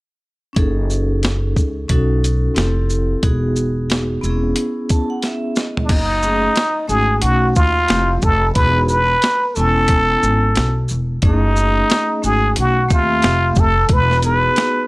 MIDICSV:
0, 0, Header, 1, 5, 480
1, 0, Start_track
1, 0, Tempo, 666667
1, 407, Time_signature, 4, 2, 24, 8
1, 10709, End_track
2, 0, Start_track
2, 0, Title_t, "Muted trumpet"
2, 0, Program_c, 0, 59
2, 4211, Note_on_c, 0, 62, 54
2, 4258, Note_on_c, 0, 63, 96
2, 4269, Note_off_c, 0, 62, 0
2, 4952, Note_off_c, 0, 63, 0
2, 4957, Note_on_c, 0, 68, 86
2, 5198, Note_on_c, 0, 66, 88
2, 5209, Note_off_c, 0, 68, 0
2, 5436, Note_off_c, 0, 66, 0
2, 5440, Note_on_c, 0, 65, 97
2, 5926, Note_on_c, 0, 69, 102
2, 5937, Note_off_c, 0, 65, 0
2, 6145, Note_off_c, 0, 69, 0
2, 6149, Note_on_c, 0, 71, 99
2, 6381, Note_off_c, 0, 71, 0
2, 6397, Note_on_c, 0, 71, 99
2, 6879, Note_on_c, 0, 69, 105
2, 6890, Note_off_c, 0, 71, 0
2, 7843, Note_off_c, 0, 69, 0
2, 8092, Note_on_c, 0, 63, 95
2, 8780, Note_off_c, 0, 63, 0
2, 8818, Note_on_c, 0, 68, 84
2, 9036, Note_off_c, 0, 68, 0
2, 9068, Note_on_c, 0, 66, 82
2, 9281, Note_off_c, 0, 66, 0
2, 9309, Note_on_c, 0, 65, 97
2, 9787, Note_on_c, 0, 69, 98
2, 9798, Note_off_c, 0, 65, 0
2, 10029, Note_on_c, 0, 71, 111
2, 10040, Note_off_c, 0, 69, 0
2, 10252, Note_off_c, 0, 71, 0
2, 10257, Note_on_c, 0, 71, 99
2, 10703, Note_off_c, 0, 71, 0
2, 10709, End_track
3, 0, Start_track
3, 0, Title_t, "Vibraphone"
3, 0, Program_c, 1, 11
3, 382, Note_on_c, 1, 61, 58
3, 394, Note_on_c, 1, 63, 60
3, 404, Note_on_c, 1, 68, 59
3, 416, Note_on_c, 1, 69, 67
3, 1335, Note_off_c, 1, 61, 0
3, 1341, Note_off_c, 1, 63, 0
3, 1346, Note_off_c, 1, 68, 0
3, 1352, Note_off_c, 1, 69, 0
3, 1355, Note_on_c, 1, 61, 61
3, 1361, Note_on_c, 1, 63, 56
3, 1366, Note_on_c, 1, 66, 57
3, 1373, Note_on_c, 1, 69, 76
3, 1834, Note_on_c, 1, 60, 68
3, 1839, Note_on_c, 1, 64, 64
3, 1841, Note_off_c, 1, 61, 0
3, 1843, Note_off_c, 1, 69, 0
3, 1844, Note_off_c, 1, 63, 0
3, 1844, Note_on_c, 1, 67, 57
3, 1846, Note_off_c, 1, 66, 0
3, 1852, Note_on_c, 1, 69, 71
3, 2320, Note_off_c, 1, 60, 0
3, 2322, Note_on_c, 1, 59, 59
3, 2323, Note_off_c, 1, 64, 0
3, 2326, Note_off_c, 1, 67, 0
3, 2328, Note_on_c, 1, 63, 53
3, 2329, Note_off_c, 1, 69, 0
3, 2332, Note_on_c, 1, 66, 61
3, 2336, Note_on_c, 1, 68, 74
3, 3026, Note_off_c, 1, 59, 0
3, 3034, Note_on_c, 1, 59, 69
3, 3042, Note_on_c, 1, 60, 48
3, 3047, Note_off_c, 1, 63, 0
3, 3049, Note_off_c, 1, 66, 0
3, 3051, Note_off_c, 1, 68, 0
3, 3053, Note_on_c, 1, 64, 64
3, 3063, Note_on_c, 1, 68, 71
3, 3092, Note_on_c, 1, 61, 68
3, 3103, Note_off_c, 1, 60, 0
3, 3527, Note_on_c, 1, 81, 67
3, 3668, Note_off_c, 1, 81, 0
3, 3672, Note_on_c, 1, 78, 63
3, 3757, Note_off_c, 1, 78, 0
3, 3770, Note_on_c, 1, 76, 64
3, 3992, Note_off_c, 1, 76, 0
3, 4010, Note_on_c, 1, 75, 58
3, 4216, Note_off_c, 1, 59, 0
3, 4226, Note_off_c, 1, 64, 0
3, 4231, Note_off_c, 1, 68, 0
3, 4232, Note_off_c, 1, 75, 0
3, 4246, Note_off_c, 1, 61, 0
3, 4475, Note_on_c, 1, 57, 61
3, 4484, Note_on_c, 1, 61, 54
3, 4487, Note_on_c, 1, 63, 54
3, 4490, Note_on_c, 1, 68, 68
3, 4668, Note_off_c, 1, 57, 0
3, 4672, Note_off_c, 1, 61, 0
3, 4674, Note_off_c, 1, 63, 0
3, 4675, Note_off_c, 1, 68, 0
3, 4952, Note_on_c, 1, 57, 60
3, 4956, Note_on_c, 1, 61, 51
3, 4962, Note_on_c, 1, 63, 48
3, 4970, Note_on_c, 1, 66, 65
3, 5185, Note_off_c, 1, 57, 0
3, 5191, Note_off_c, 1, 61, 0
3, 5194, Note_on_c, 1, 57, 60
3, 5195, Note_off_c, 1, 63, 0
3, 5199, Note_off_c, 1, 66, 0
3, 5199, Note_on_c, 1, 61, 49
3, 5203, Note_on_c, 1, 63, 55
3, 5207, Note_on_c, 1, 66, 69
3, 5501, Note_off_c, 1, 57, 0
3, 5504, Note_off_c, 1, 61, 0
3, 5506, Note_off_c, 1, 63, 0
3, 5507, Note_off_c, 1, 66, 0
3, 5674, Note_on_c, 1, 57, 65
3, 5681, Note_on_c, 1, 60, 67
3, 5684, Note_on_c, 1, 64, 60
3, 5692, Note_on_c, 1, 67, 75
3, 5867, Note_off_c, 1, 57, 0
3, 5871, Note_off_c, 1, 60, 0
3, 5872, Note_off_c, 1, 64, 0
3, 5876, Note_off_c, 1, 67, 0
3, 6158, Note_on_c, 1, 59, 55
3, 6162, Note_on_c, 1, 63, 57
3, 6164, Note_on_c, 1, 66, 59
3, 6172, Note_on_c, 1, 68, 66
3, 6463, Note_off_c, 1, 59, 0
3, 6465, Note_off_c, 1, 63, 0
3, 6466, Note_off_c, 1, 66, 0
3, 6470, Note_off_c, 1, 68, 0
3, 6882, Note_on_c, 1, 59, 75
3, 6884, Note_on_c, 1, 61, 72
3, 6894, Note_on_c, 1, 64, 68
3, 6899, Note_on_c, 1, 80, 77
3, 7665, Note_off_c, 1, 59, 0
3, 7666, Note_off_c, 1, 61, 0
3, 7671, Note_off_c, 1, 64, 0
3, 7673, Note_off_c, 1, 80, 0
3, 8084, Note_on_c, 1, 57, 68
3, 8088, Note_on_c, 1, 61, 57
3, 8092, Note_on_c, 1, 63, 58
3, 8101, Note_on_c, 1, 68, 70
3, 8770, Note_off_c, 1, 57, 0
3, 8772, Note_off_c, 1, 61, 0
3, 8774, Note_off_c, 1, 63, 0
3, 8778, Note_off_c, 1, 68, 0
3, 8800, Note_on_c, 1, 57, 56
3, 8803, Note_on_c, 1, 61, 53
3, 8808, Note_on_c, 1, 63, 56
3, 8813, Note_on_c, 1, 66, 65
3, 9164, Note_off_c, 1, 57, 0
3, 9166, Note_off_c, 1, 61, 0
3, 9169, Note_off_c, 1, 63, 0
3, 9171, Note_off_c, 1, 66, 0
3, 9278, Note_on_c, 1, 57, 73
3, 9284, Note_on_c, 1, 60, 62
3, 9288, Note_on_c, 1, 76, 62
3, 9294, Note_on_c, 1, 67, 78
3, 9504, Note_off_c, 1, 57, 0
3, 9508, Note_off_c, 1, 60, 0
3, 9512, Note_on_c, 1, 57, 66
3, 9517, Note_off_c, 1, 76, 0
3, 9517, Note_on_c, 1, 60, 56
3, 9521, Note_off_c, 1, 67, 0
3, 9526, Note_on_c, 1, 76, 56
3, 9530, Note_on_c, 1, 67, 66
3, 9820, Note_off_c, 1, 57, 0
3, 9822, Note_off_c, 1, 60, 0
3, 9827, Note_off_c, 1, 76, 0
3, 9829, Note_off_c, 1, 67, 0
3, 10241, Note_on_c, 1, 59, 64
3, 10245, Note_on_c, 1, 63, 54
3, 10250, Note_on_c, 1, 66, 50
3, 10257, Note_on_c, 1, 68, 69
3, 10709, Note_off_c, 1, 59, 0
3, 10709, Note_off_c, 1, 63, 0
3, 10709, Note_off_c, 1, 66, 0
3, 10709, Note_off_c, 1, 68, 0
3, 10709, End_track
4, 0, Start_track
4, 0, Title_t, "Upright bass"
4, 0, Program_c, 2, 32
4, 409, Note_on_c, 2, 30, 99
4, 1099, Note_off_c, 2, 30, 0
4, 1129, Note_on_c, 2, 37, 72
4, 1334, Note_off_c, 2, 37, 0
4, 1367, Note_on_c, 2, 35, 98
4, 1778, Note_off_c, 2, 35, 0
4, 1849, Note_on_c, 2, 29, 89
4, 2259, Note_off_c, 2, 29, 0
4, 2328, Note_on_c, 2, 28, 85
4, 3018, Note_off_c, 2, 28, 0
4, 3049, Note_on_c, 2, 28, 79
4, 3253, Note_off_c, 2, 28, 0
4, 4245, Note_on_c, 2, 30, 85
4, 4656, Note_off_c, 2, 30, 0
4, 4961, Note_on_c, 2, 32, 74
4, 5169, Note_off_c, 2, 32, 0
4, 5203, Note_on_c, 2, 35, 91
4, 5410, Note_off_c, 2, 35, 0
4, 5451, Note_on_c, 2, 39, 82
4, 5655, Note_off_c, 2, 39, 0
4, 5685, Note_on_c, 2, 29, 97
4, 5891, Note_off_c, 2, 29, 0
4, 5926, Note_on_c, 2, 29, 91
4, 6132, Note_off_c, 2, 29, 0
4, 6163, Note_on_c, 2, 28, 91
4, 6575, Note_off_c, 2, 28, 0
4, 6890, Note_on_c, 2, 28, 91
4, 7300, Note_off_c, 2, 28, 0
4, 7367, Note_on_c, 2, 32, 91
4, 7573, Note_off_c, 2, 32, 0
4, 7612, Note_on_c, 2, 35, 83
4, 7815, Note_off_c, 2, 35, 0
4, 7855, Note_on_c, 2, 28, 84
4, 8057, Note_off_c, 2, 28, 0
4, 8084, Note_on_c, 2, 30, 94
4, 8496, Note_off_c, 2, 30, 0
4, 8813, Note_on_c, 2, 32, 83
4, 9016, Note_off_c, 2, 32, 0
4, 9054, Note_on_c, 2, 35, 89
4, 9257, Note_off_c, 2, 35, 0
4, 9294, Note_on_c, 2, 39, 85
4, 9496, Note_off_c, 2, 39, 0
4, 9532, Note_on_c, 2, 29, 102
4, 9735, Note_off_c, 2, 29, 0
4, 9767, Note_on_c, 2, 29, 94
4, 9973, Note_off_c, 2, 29, 0
4, 10008, Note_on_c, 2, 28, 89
4, 10418, Note_off_c, 2, 28, 0
4, 10709, End_track
5, 0, Start_track
5, 0, Title_t, "Drums"
5, 406, Note_on_c, 9, 42, 76
5, 407, Note_on_c, 9, 36, 94
5, 478, Note_off_c, 9, 42, 0
5, 479, Note_off_c, 9, 36, 0
5, 648, Note_on_c, 9, 82, 46
5, 720, Note_off_c, 9, 82, 0
5, 885, Note_on_c, 9, 42, 58
5, 898, Note_on_c, 9, 38, 83
5, 957, Note_off_c, 9, 42, 0
5, 970, Note_off_c, 9, 38, 0
5, 1127, Note_on_c, 9, 36, 82
5, 1128, Note_on_c, 9, 82, 43
5, 1199, Note_off_c, 9, 36, 0
5, 1200, Note_off_c, 9, 82, 0
5, 1363, Note_on_c, 9, 42, 87
5, 1366, Note_on_c, 9, 36, 70
5, 1435, Note_off_c, 9, 42, 0
5, 1438, Note_off_c, 9, 36, 0
5, 1614, Note_on_c, 9, 42, 49
5, 1614, Note_on_c, 9, 82, 53
5, 1686, Note_off_c, 9, 42, 0
5, 1686, Note_off_c, 9, 82, 0
5, 1844, Note_on_c, 9, 42, 60
5, 1857, Note_on_c, 9, 38, 90
5, 1916, Note_off_c, 9, 42, 0
5, 1929, Note_off_c, 9, 38, 0
5, 2085, Note_on_c, 9, 82, 46
5, 2157, Note_off_c, 9, 82, 0
5, 2324, Note_on_c, 9, 42, 76
5, 2326, Note_on_c, 9, 36, 94
5, 2396, Note_off_c, 9, 42, 0
5, 2398, Note_off_c, 9, 36, 0
5, 2563, Note_on_c, 9, 82, 45
5, 2635, Note_off_c, 9, 82, 0
5, 2807, Note_on_c, 9, 42, 72
5, 2819, Note_on_c, 9, 38, 88
5, 2879, Note_off_c, 9, 42, 0
5, 2891, Note_off_c, 9, 38, 0
5, 3048, Note_on_c, 9, 82, 46
5, 3120, Note_off_c, 9, 82, 0
5, 3281, Note_on_c, 9, 42, 88
5, 3353, Note_off_c, 9, 42, 0
5, 3524, Note_on_c, 9, 42, 54
5, 3524, Note_on_c, 9, 82, 52
5, 3531, Note_on_c, 9, 36, 86
5, 3596, Note_off_c, 9, 42, 0
5, 3596, Note_off_c, 9, 82, 0
5, 3603, Note_off_c, 9, 36, 0
5, 3762, Note_on_c, 9, 42, 64
5, 3769, Note_on_c, 9, 38, 41
5, 3834, Note_off_c, 9, 42, 0
5, 3841, Note_off_c, 9, 38, 0
5, 4001, Note_on_c, 9, 82, 44
5, 4011, Note_on_c, 9, 38, 74
5, 4073, Note_off_c, 9, 82, 0
5, 4083, Note_off_c, 9, 38, 0
5, 4157, Note_on_c, 9, 43, 79
5, 4229, Note_off_c, 9, 43, 0
5, 4242, Note_on_c, 9, 42, 79
5, 4242, Note_on_c, 9, 49, 86
5, 4243, Note_on_c, 9, 36, 96
5, 4314, Note_off_c, 9, 42, 0
5, 4314, Note_off_c, 9, 49, 0
5, 4315, Note_off_c, 9, 36, 0
5, 4481, Note_on_c, 9, 82, 46
5, 4553, Note_off_c, 9, 82, 0
5, 4720, Note_on_c, 9, 42, 67
5, 4733, Note_on_c, 9, 38, 99
5, 4792, Note_off_c, 9, 42, 0
5, 4805, Note_off_c, 9, 38, 0
5, 4960, Note_on_c, 9, 82, 46
5, 5032, Note_off_c, 9, 82, 0
5, 5195, Note_on_c, 9, 42, 95
5, 5267, Note_off_c, 9, 42, 0
5, 5440, Note_on_c, 9, 82, 56
5, 5447, Note_on_c, 9, 36, 82
5, 5512, Note_off_c, 9, 82, 0
5, 5519, Note_off_c, 9, 36, 0
5, 5677, Note_on_c, 9, 42, 66
5, 5689, Note_on_c, 9, 38, 99
5, 5749, Note_off_c, 9, 42, 0
5, 5761, Note_off_c, 9, 38, 0
5, 5916, Note_on_c, 9, 82, 52
5, 5924, Note_on_c, 9, 36, 86
5, 5988, Note_off_c, 9, 82, 0
5, 5996, Note_off_c, 9, 36, 0
5, 6158, Note_on_c, 9, 42, 78
5, 6162, Note_on_c, 9, 36, 101
5, 6230, Note_off_c, 9, 42, 0
5, 6234, Note_off_c, 9, 36, 0
5, 6397, Note_on_c, 9, 82, 52
5, 6469, Note_off_c, 9, 82, 0
5, 6638, Note_on_c, 9, 42, 69
5, 6651, Note_on_c, 9, 38, 94
5, 6710, Note_off_c, 9, 42, 0
5, 6723, Note_off_c, 9, 38, 0
5, 6880, Note_on_c, 9, 82, 46
5, 6952, Note_off_c, 9, 82, 0
5, 7113, Note_on_c, 9, 42, 89
5, 7121, Note_on_c, 9, 36, 79
5, 7185, Note_off_c, 9, 42, 0
5, 7193, Note_off_c, 9, 36, 0
5, 7365, Note_on_c, 9, 82, 54
5, 7437, Note_off_c, 9, 82, 0
5, 7600, Note_on_c, 9, 42, 72
5, 7612, Note_on_c, 9, 38, 84
5, 7672, Note_off_c, 9, 42, 0
5, 7684, Note_off_c, 9, 38, 0
5, 7836, Note_on_c, 9, 82, 46
5, 7908, Note_off_c, 9, 82, 0
5, 8078, Note_on_c, 9, 42, 78
5, 8084, Note_on_c, 9, 36, 103
5, 8150, Note_off_c, 9, 42, 0
5, 8156, Note_off_c, 9, 36, 0
5, 8325, Note_on_c, 9, 82, 48
5, 8397, Note_off_c, 9, 82, 0
5, 8566, Note_on_c, 9, 42, 74
5, 8579, Note_on_c, 9, 38, 104
5, 8638, Note_off_c, 9, 42, 0
5, 8651, Note_off_c, 9, 38, 0
5, 8808, Note_on_c, 9, 82, 51
5, 8880, Note_off_c, 9, 82, 0
5, 9043, Note_on_c, 9, 42, 93
5, 9115, Note_off_c, 9, 42, 0
5, 9288, Note_on_c, 9, 82, 53
5, 9292, Note_on_c, 9, 36, 96
5, 9360, Note_off_c, 9, 82, 0
5, 9364, Note_off_c, 9, 36, 0
5, 9521, Note_on_c, 9, 42, 72
5, 9534, Note_on_c, 9, 38, 99
5, 9593, Note_off_c, 9, 42, 0
5, 9606, Note_off_c, 9, 38, 0
5, 9758, Note_on_c, 9, 82, 47
5, 9768, Note_on_c, 9, 36, 87
5, 9830, Note_off_c, 9, 82, 0
5, 9840, Note_off_c, 9, 36, 0
5, 9999, Note_on_c, 9, 42, 78
5, 10004, Note_on_c, 9, 36, 104
5, 10071, Note_off_c, 9, 42, 0
5, 10076, Note_off_c, 9, 36, 0
5, 10159, Note_on_c, 9, 38, 33
5, 10231, Note_off_c, 9, 38, 0
5, 10242, Note_on_c, 9, 42, 49
5, 10242, Note_on_c, 9, 82, 53
5, 10314, Note_off_c, 9, 42, 0
5, 10314, Note_off_c, 9, 82, 0
5, 10485, Note_on_c, 9, 42, 65
5, 10498, Note_on_c, 9, 38, 98
5, 10557, Note_off_c, 9, 42, 0
5, 10570, Note_off_c, 9, 38, 0
5, 10709, End_track
0, 0, End_of_file